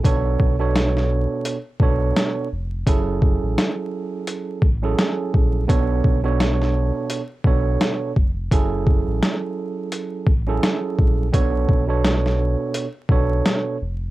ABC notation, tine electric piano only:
X:1
M:4/4
L:1/16
Q:"Swing 16ths" 1/4=85
K:Bdor
V:1 name="Tine electric piano"
[B,,B,DAc]3 [B,,B,DAc]6 z [B,,B,DAc]4 z2 | [F,CEGA]8- [F,CEGA]2 z [F,CEGA]4- [F,CEGA] | [B,,B,DAc]3 [B,,B,DAc]6 z [B,,B,DAc]4 z2 | [F,CEGA]8- [F,CEGA]2 z [F,CEGA]4- [F,CEGA] |
[B,,B,DAc]3 [B,,B,DAc]6 z [B,,B,DAc]4 z2 |]